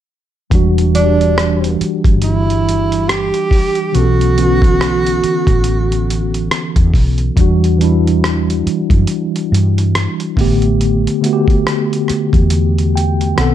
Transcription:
0.50 E1 E3 G3 D4, kick, closed hi-hat
0.55 F#4
0.78 closed hi-hat
0.93 E3 G3 D4, closed hi-hat
0.98 F#4
1.05 G4
1.21 closed hi-hat
1.38 cross-stick, closed hi-hat
1.64 closed hi-hat
1.81 muted fretless electric bass stroke, closed hi-hat
2.04 G1, kick, closed hi-hat
2.22 E4, closed hi-hat
2.50 closed hi-hat
2.69 closed hi-hat
2.92 closed hi-hat
3.09 G4, cross-stick, closed hi-hat
3.34 closed hi-hat
3.51 kick, open hi-hat
3.75 closed hi-hat
3.92 B1 E3 B3 C#4 F#4, closed hi-hat
3.97 A4
4.21 closed hi-hat
4.35 D3 B3 C#4, closed hi-hat
4.40 E3 F#4
4.62 kick, closed hi-hat
4.81 cross-stick, closed hi-hat
5.07 closed hi-hat
5.23 muted fretless electric bass stroke, closed hi-hat
5.47 A1, kick, closed hi-hat
5.64 closed hi-hat
5.92 closed hi-hat
6.10 closed hi-hat
6.34 closed hi-hat
6.51 cross-stick, closed hi-hat
6.76 E2, kick, closed hi-hat
6.94 B1, kick, open hi-hat
7.18 closed hi-hat
7.36 E2 E3 G3 D4, kick, closed hi-hat
7.41 F#4
7.64 closed hi-hat
7.79 E3 G3 D4, closed hi-hat
7.84 E4
8.07 closed hi-hat
8.24 cross-stick, closed hi-hat
8.50 closed hi-hat
8.66 muted fretless electric bass stroke, closed hi-hat
8.90 F#2, kick, closed hi-hat
9.07 closed hi-hat
9.36 closed hi-hat
9.52 G2, closed hi-hat
9.78 closed hi-hat
9.95 cross-stick, closed hi-hat
10.20 closed hi-hat
10.36 A1 D3 A3 B3, kick, open hi-hat
10.41 G4
10.62 closed hi-hat
10.81 closed hi-hat
11.07 closed hi-hat
11.21 D3 A3 B3, closed hi-hat
11.26 F#4
11.33 G4
11.48 kick, closed hi-hat
11.67 cross-stick, closed hi-hat
11.93 closed hi-hat
12.08 muted fretless electric bass stroke, cross-stick, closed hi-hat
12.33 E2, kick, closed hi-hat
12.50 closed hi-hat
12.78 closed hi-hat
12.96 G5, closed hi-hat
13.21 closed hi-hat
13.36 B1 D#3 B3 C4 F#5, cross-stick, closed hi-hat
13.41 A4

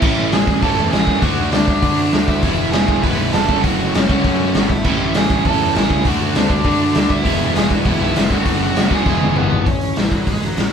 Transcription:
Already playing: E4 E5
0.02 A1 A2 E3 A3 C#4 E4, kick, crash
0.20 A1
0.32 A1 G#4 G#5, snare, open hi-hat
0.47 A1, kick
0.62 A1 A2 E3 A3 C#4 E4 A4 A5, kick, open hi-hat
0.79 E2
0.91 A1 G#4 G#5, snare, open hi-hat
1.07 F#2, kick
1.21 D2 D3 A3 D4 F#4 F#5, kick, open hi-hat
1.40 D2
1.51 D2 D4 D5, snare, open hi-hat
1.68 D2, kick
1.82 D3 A3 D4, kick, open hi-hat
1.86 F#4
2.12 D2, snare, open hi-hat
2.28 E4 E5, kick
2.42 E1 E3 G#3 B3, kick, open hi-hat
2.47 E4
2.59 E1
2.72 E1 G#4 G#5, snare, open hi-hat
2.88 E1, kick
3.04 E1 E3 G#3 B3 E4 B4 B5, kick, open hi-hat
3.18 B1
3.33 E1 A4 A5, snare, open hi-hat
3.49 F#1 F#3 A3 C#4 F#4, kick
3.62 F#1 F#4 F#5, kick, open hi-hat
3.80 F#1
3.94 F#1 C#4 C#5, snare, open hi-hat
4.09 F#1 F#3 A3 C#4 F#4, kick
4.24 F#2, kick, open hi-hat
4.54 G#1, snare, open hi-hat
4.70 E4 E5, kick
4.84 A1 A2 E3 A3 C#4, kick, crash
4.89 E4
5.00 A1
5.14 A1 G#4 G#5, snare, open hi-hat
5.30 A1, kick
5.45 A1 A2 E3 A3 C#4 A4 A5, kick, open hi-hat
5.49 E4
5.61 E2
5.75 A1 G#4 G#5, snare, open hi-hat
5.90 C#2, kick
6.05 D2 D3 A3 D4 F#4 F#5, kick, open hi-hat
6.22 D2
6.35 D2 D4 D5, snare, open hi-hat
6.50 D2, kick
6.64 D3 A3 D4 F#4, kick, open hi-hat
6.95 D2, snare, open hi-hat
7.09 E4 E5, kick
7.23 E1 E3 G#3 B3 E4, kick, open hi-hat
7.41 E1
7.53 E1 G#4 G#5, snare, open hi-hat
7.70 E1 F#4 F#5, kick
7.85 E1 E3 G#3 B3 E4, kick, open hi-hat
7.89 E5
8.00 B1 E4 E5
8.16 F1, snare, open hi-hat
8.30 F#1 F#3 A3 C#4 F#4, kick
8.34 F#4 F#5
8.46 F#1, kick, open hi-hat
8.59 F#1 F#4
8.64 F#5
8.75 F#1, snare, open hi-hat
8.90 F#1 F#3 A3 C#4 F#4 G#4 G#5, kick
9.05 E1 E3 G#3 B3 E4, kick, snare
9.21 high tom
9.35 G#1 B3 B4, mid tom
9.51 floor tom
9.66 A1 C#4 C#5, kick, open hi-hat
9.81 A1, open hi-hat
9.96 A1 E3 E4, snare, open hi-hat
10.11 A1 F#3 F#4, kick, open hi-hat
10.27 A1 G#3 G#4, kick, open hi-hat
10.42 A1 F#3 F#4, open hi-hat
10.56 A1, snare, open hi-hat

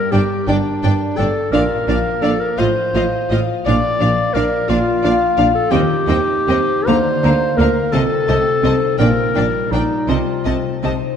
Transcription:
Already playing: G2 G3 D4 A#4 D5
0.11 G1 G2 D4 G4 A#4 D5 G5
0.48 G1 G2 D4 G4 D5 G5
0.83 G1 G2 D4 D5 G5
1.17 G1 G2 D4 G4 A4 D5 G5
1.52 A#1 A#2 D4 A#4 D5 F5
1.87 A#1 A#2 F3 D4 D5 F5
2.22 A#1 A#2 D4 A4 A#4 D5 F5
2.40 A#4
2.58 A1 A2 F4 C5 D#5 F5
2.94 A1 A2 F3 F4 D#5 F5
3.30 A1 A2 F4 D#5 F5
3.65 A#1 A#2 D4 D5 F5
4.00 A#1 A#2 F3 D4 D5 F5
4.33 A#1 A#2 D4 A#4 D5 F5
4.69 A#1 A#2 D4 F4 D5 F5
5.04 A#1 A#2 D4 D5 F5
5.37 A#1 A#2 D4 F4 D5 F5
5.55 A4
5.71 D#2 D#3 C4 G4 D#5 G5
6.07 D#2 D#3 C4 D#4 D#5 G5
6.47 D#2 D#3 C4 D#4 C5 D#5 G5
6.86 D2 D3 A#3 C5 F5 A#5
7.23 D2 D3 A#3 F5 A#5
7.57 D2 D3 A#3 F4 A#4 F5 A#5
7.92 C2 C3 C4 A4 D#5 A5
8.28 C2 C3 A3 C4 D#5 A5
8.63 C2 C3 C4 D#4 C5 D#5 A5
8.98 A#1 A#2 D4 A#4 D5 G5
9.34 A#1 A#2 G3 D4 D5 G5
9.71 A#1 A#2 D4 D#4 D5 G5
10.08 C2 C3 C4 F4 D#5 A5
10.45 C2 C3 A3 C4 D#5 A5
10.83 C2 C3 C4 D#4 C5 D#5 A5

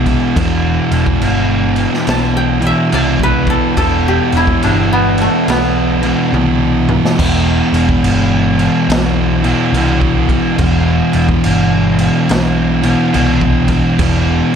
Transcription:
Already playing: C2 E2 B2 E3 A3 B3 D4
0.06 kick, crash
0.35 E1 E2 B2 E3, kick, crash
0.91 E1, crash
1.06 kick
1.21 G1, crash
1.76 crash
1.94 snare
2.07 B1 A5, snare, crash
2.37 G5
2.61 E2 B2 E3, crash
2.67 E5
2.91 C2 E2 B2 E3 D5, crash
3.20 B4, kick
3.47 A4, kick, crash
3.76 E1 E2 B2 E3 A4, kick, crash
4.08 G4
4.32 E1, crash
4.37 E4
4.47 kick
4.63 G1 D4, crash
4.93 B3
5.18 A3, crash
5.48 B1 B3, snare, crash
6.02 E2 B2 E3, crash
6.33 C2 E2 B2, high tom
6.37 E3
6.89 mid tom
7.05 snare
7.18 E1 E2 B2 E3, kick, crash
7.72 E1, crash
7.89 kick
8.03 G1, crash
8.59 crash
8.88 B1, snare, crash
9.43 E2 B2 E3, crash
9.72 C2 E2 B2, crash
9.77 E3
10.01 kick
10.29 kick, crash
10.58 E1 E2 B2 E3, kick, crash
11.13 E1, crash
11.29 kick
11.44 G1, crash
11.99 crash
12.29 B1, snare, crash
12.83 E2 B2 E3, crash
13.14 C2 E2 B2 E3, crash
13.41 kick
13.68 kick, crash
13.99 E1 E2 B2 E3, kick, crash

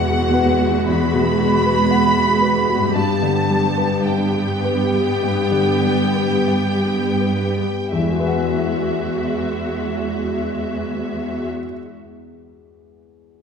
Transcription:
Already playing: E2 B2 G#3 B3 F#4 B4 E5 F#5
0.08 G#4
0.34 B4
0.62 F#4
0.88 E2 B5
1.15 B2
1.40 G#3
1.65 B4
1.91 F#5
2.17 G#4
2.42 B4
2.70 F#4
2.78 G2 B3
2.87 G4
2.91 D5
2.95 G2 B3 G4 A5
3.22 D3
3.50 G3
3.77 B4
4.06 G5
4.35 G4
4.64 B4
4.94 G4
5.23 G2
5.51 D3
5.82 G3
6.16 B4
6.48 G5
6.83 G4
7.20 B4
7.58 G4
7.92 E2 G#3 E5
7.96 E3 F#4
8.01 E3
8.05 G#3
8.13 F#4
8.19 B4 E5
8.27 F#5

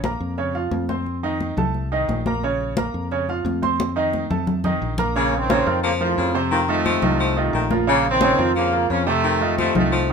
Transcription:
Already playing: A#1
0.04 A#3 A#4 A#5, high conga
0.20 F2
0.38 C#3 C#4 C#5, high conga
0.55 F3 F4 F5, high conga
0.71 F2, high conga
0.89 C4 C5 C6, high conga
1.06 high conga
1.23 D#3 D#4 D#5, high conga
1.41 high conga
1.57 C2 A3 A4 A5, high conga, low conga
1.74 high conga
1.92 D#3 D#4 D#5, high conga
2.08 A#1, high conga
2.26 A#3 A#4 A#5, high conga
2.43 C#3 C#4 C#5, high conga
2.61 high conga
2.77 A#3 A#4 A#5, high conga
2.94 F2
3.11 C#3 C#4 C#5, high conga
3.29 F3 F4 F5, high conga
3.45 F2, high conga
3.62 C4 C5 C6, high conga
3.80 high conga
3.96 D#3 D#4 D#5
4.13 high conga
4.30 F2 A3 A4 A5, low conga
4.47 low conga
4.64 D#3 D#4 D#5, low conga
4.82 A#1
4.98 A#3 A#4 A#5, low conga
5.15 C#3 A#3 C#4 C#5, high conga
5.33 high conga
5.38 D#3 C4
5.50 A#2 C#3 C#4 C#5, high conga
5.67 F2 F3 F4 A#4, high conga
5.83 C#3 F3 A#3, high conga
6.00 A2 F3 F4 A#4, high conga
6.17 F2 C#3, high conga
6.34 C3 C4 C5, high conga
6.51 A2 D#3 F3, high conga
6.68 C3 D#3 A3 D#4 F4, high conga
6.85 F3, high conga
7.02 C2 D#3 D#4 F4, high conga, low conga
7.19 F3, high conga
7.36 D#3 D#4 F4, high conga
7.53 A#1 D#3, high conga
7.71 F3 F4 A#4, high conga
7.87 C#3 A#3 C#4 C#5, high conga
8.05 high conga
8.11 D#3 C4
8.21 A#2 C#3 C#4 C#5, high conga
8.38 F2 F3 F4 A#4, high conga
8.55 C#3 F3 A#3, high conga
8.72 F3 F4 A#4, high conga
8.90 F2 C#3 F3 C#4, high conga
9.07 C3 A3 C4 C5, high conga
9.24 D#3, high conga
9.41 D#3 D#4 F4, high conga
9.58 C3 F3 A3, high conga
9.75 C2 C3 D#3 A3 D#4 F4, high conga, low conga
9.92 F3, high conga
10.10 D#3, high conga

